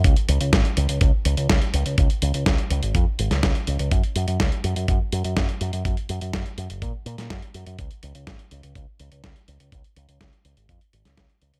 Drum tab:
HH |xxxxxxxxx-xxxxxx|xxxxxxxxx-xxxxxx|xxxxxxxxx-xxxxxx|xxxxxxxxx-xxxxxx|
SD |----o-------o---|----o------oo---|----o-------o---|----o------oo---|
BD |o---o---o---o---|o---o---o---o---|o---o---o---o---|o---o---o---o---|

HH |xxxxxxxxx-xxxxxx|xxxxxxxxxxxxxxxx|
SD |----o-------o---|----o------oo---|
BD |o---o---o---o---|o---o---o---o---|